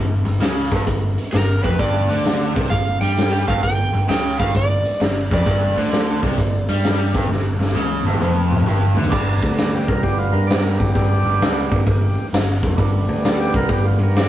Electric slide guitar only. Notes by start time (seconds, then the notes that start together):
1.33 A#4
1.63 B4
1.79 D5
2.70 F5
3.01 G5
3.48 F5
3.63 G5
4.09 G5
4.39 F5
4.56 D5
5.34 D5